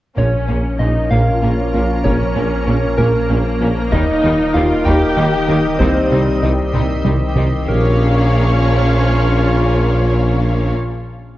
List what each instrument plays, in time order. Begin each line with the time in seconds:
0.17 double bass section A#1, sub bass A#1, tuba A#1, analog synth bass A#2, cello section A#2, ambient pad F3 A#3 A#4 C#5, violin section A#3 C#4, french horn section A#3 C#4, viola section C#4, soft synth lead C#5, taiko
0.47 double bass section A#1, tuba A#1, cello section A#2, violin section A#3 C#4, analog synth bass A#3
0.79 double bass section A#1, tuba A#1, cello section A#2, analog synth bass A#2, violin section A#3 C#4, viola section D#4, soft synth lead D#5
1.11 double bass section A#1, tuba A#1, cello section A#2, analog synth bass A#2, violin section A#3 C#4, viola section F4, soft synth lead F5
1.42 double bass section A#1, tuba A#1, cello section A#2, violin section A#3 C#4, analog synth bass A#3
1.73 tuba A#1, double bass section A#1, cello section A#2, violin section A#3 C#4, analog synth bass A#3
2.04 tuba A#1, double bass section A#1, cello section A#2, analog synth bass A#2, violin section A#3 C#4, viola section C#4, soft synth lead C#5, taiko
2.35 double bass section A#1, tuba A#1, cello section A#2, violin section A#3 C#4, analog synth bass A#3
2.66 tuba A#1, double bass section A#1, analog synth bass A#2, cello section A#2, violin section A#3 C#4
2.98 double bass section A#1, tuba A#1, analog synth bass A#2, cello section A#2, violin section A#3 C#4, viola section A#3, soft synth lead A#4, taiko
3.29 tuba A#1, double bass section A#1, cello section A#2, violin section A#3 C#4, analog synth bass A#3
3.60 double bass section A#1, tuba A#1, cello section A#2, analog synth bass A#3, violin section A#3 C#4
3.91 sub bass D#1, double bass section D#2, tuba D#2, analog synth bass D#2, cello section D#3, ambient pad D#3 D#5, violin section G3 A#3 D#4, french horn section A#3 D#4, viola section D#4, soft synth lead D#5, taiko
4.22 tuba D#2, double bass section D#2, analog synth bass D#3, cello section D#3, violin section G3 A#3 D#4
4.54 analog synth bass D#2, tuba D#2, double bass section D#2, cello section D#3, violin section G3 A#3 D#4, viola section F4, soft synth lead F5
4.85 double bass section D#2, tuba D#2, analog synth bass D#2, cello section D#3, violin section G3 A#3 D#4, viola section G4, soft synth lead G5, taiko
5.16 double bass section D#2, tuba D#2, cello section D#3, analog synth bass D#3, violin section G3 A#3 D#4
5.48 tuba D#2, double bass section D#2, analog synth bass D#3, cello section D#3, violin section G3 A#3 D#4
5.79 tuba C2, double bass section C2, sub bass C2, analog synth bass C2, cello section C3, french horn section G3, violin section G3 C4 D#4, ambient pad C4 G4, viola section C4, soft synth lead C5, taiko
6.10 tuba C2, double bass section C2, analog synth bass C3, cello section C3, violin section G3 C4 D#4
6.42 double bass section C2, tuba C2, analog synth bass C2, cello section C3, violin section G3 C4 D#4
6.73 double bass section C2, tuba C2, analog synth bass C2, cello section C3, violin section G3 C4 D#4, taiko mid
7.04 tuba C2, double bass section C2, analog synth bass C3, cello section C3, violin section G3 C4 D#4, taiko high
7.35 tuba C2, double bass section C2, analog synth bass C3, cello section C3, violin section G3 C4 D#4, taiko low
7.67 tuba A#1, double bass section A#1, sub bass A#1, cello section A#2, ambient pad F3 C#4 F4 C#5, french horn section F3 C#4, violin section A#3 C#5 F5, viola section C#4, soft synth lead A#4